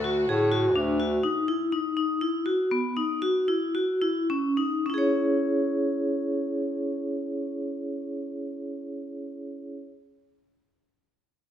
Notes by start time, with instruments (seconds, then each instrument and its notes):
Already playing: bass clarinet D2, string section D3 A3 F#4
0.04 vibraphone F#4
0.28 bass clarinet A2, vibraphone G#4
0.52 vibraphone F#4
0.76 bass clarinet D2, vibraphone D4
1.00 vibraphone F#4
1.23 vibraphone D#4
1.48 vibraphone E4
1.72 vibraphone D#4
1.97 vibraphone D#4
2.21 vibraphone E4
2.46 vibraphone F#4
2.71 vibraphone B3
2.97 vibraphone D#4
3.22 vibraphone F#4
3.48 vibraphone E4
3.75 vibraphone F#4
4.02 vibraphone E4
4.30 vibraphone C#4
4.57 vibraphone D#4
4.86 vibraphone C#4 E4
4.94 vibraphone G#4
4.98 vibraphone C#5